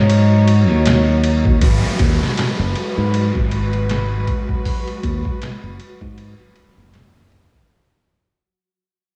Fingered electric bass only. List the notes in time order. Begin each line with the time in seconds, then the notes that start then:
Already playing: G#2
0.69 D#2
1.62 G#1
2.00 D#2
2.59 F#1
2.98 G#2
3.35 G#1
5.04 D#2
5.63 F#1
6.01 G#2
6.78 F#1
7.53 G#1